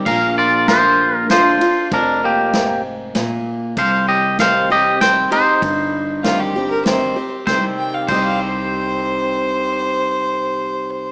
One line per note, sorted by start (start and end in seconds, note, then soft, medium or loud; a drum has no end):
0.06 1.52 A#1 medium
0.06 1.24 A#2 medium
0.06 0.36 A#4 medium
0.06 0.38 F5 medium
0.06 kick medium
0.06 crash medium
0.38 0.67 F4 medium
0.38 0.66 D5 medium
0.68 1.27 D3 medium
0.68 1.27 A#3 medium
0.68 1.28 D4 medium
0.68 1.26 F4 medium
0.68 1.28 F4 medium
0.68 1.16 C5 medium
0.68 snare medium
0.68 ride soft
1.16 1.30 A#4 medium
1.30 1.59 D3 medium
1.30 1.60 A#3 medium
1.30 1.60 D4 medium
1.30 1.88 F4 medium
1.30 1.60 F4 medium
1.30 1.93 C5 medium
1.30 snare medium
1.30 ride medium
1.61 1.91 D4 soft
1.61 1.90 F4 medium
1.61 ride medium
1.92 3.38 F1 medium
1.92 2.55 F2 loud
1.92 2.21 D4 medium
1.92 2.24 A#4 medium
1.92 kick medium
1.92 ride medium
2.24 2.81 A#3 medium
2.24 2.81 G4 medium
2.53 3.13 G#2 medium
2.53 snare medium
2.53 ride medium
3.15 3.73 A#2 medium
3.15 snare medium
3.15 ride medium
3.77 5.23 C2 medium
3.77 4.94 C3 medium
3.77 4.06 C5 medium
3.77 4.08 F5 medium
3.77 kick loud
3.77 ride medium
4.08 4.37 G4 medium
4.08 4.39 D#5 medium
4.39 4.68 D#3 medium
4.39 4.69 G3 medium
4.39 4.69 C4 medium
4.39 4.69 G4 medium
4.39 4.69 C5 medium
4.39 4.71 F5 medium
4.39 snare medium
4.39 ride medium
4.70 5.00 C4 soft
4.70 4.99 G4 medium
4.70 4.99 D#5 medium
5.01 5.31 D#3 medium
5.01 5.31 G3 medium
5.01 5.31 C4 medium
5.01 5.30 G4 medium
5.01 5.30 C5 medium
5.01 5.29 G5 medium
5.01 snare medium
5.01 ride medium
5.31 5.62 C4 soft
5.31 6.82 D#4 medium
5.31 5.61 G4 medium
5.31 6.82 C5 medium
5.31 ride medium
5.62 7.08 G1 medium
5.62 6.79 G2 medium
5.62 kick loud
5.62 ride medium
6.23 6.54 D#3 soft
6.23 6.54 G3 medium
6.23 6.54 C4 medium
6.23 6.41 F4 medium
6.23 6.54 G4 medium
6.23 snare medium
6.23 ride medium
6.40 6.69 G4 medium
6.56 6.86 C4 soft
6.56 6.85 G4 medium
6.70 6.84 A#4 medium
6.85 7.15 D#3 medium
6.85 7.16 G3 medium
6.85 7.16 C4 medium
6.85 7.15 G4 medium
6.85 7.30 C5 medium
6.85 snare medium
6.85 ride medium
7.16 7.46 C4 soft
7.16 7.46 G4 soft
7.47 7.64 C2 medium
7.47 8.08 C3 medium
7.47 8.09 D#3 medium
7.47 8.10 G3 medium
7.47 8.10 C4 medium
7.47 8.11 G4 medium
7.47 7.64 C5 medium
7.47 kick loud
7.47 snare medium
7.78 7.95 G5 medium
7.94 8.08 F5 medium
8.08 11.12 C2 medium
8.08 11.12 C3 medium
8.08 11.12 D#3 medium
8.08 11.12 G3 medium
8.08 11.12 C4 medium
8.08 11.12 G4 medium
8.08 11.12 C5 medium
8.08 8.23 D#5 medium
8.08 kick medium
8.08 crash medium
8.24 8.41 F5 medium
8.40 11.12 C5 loud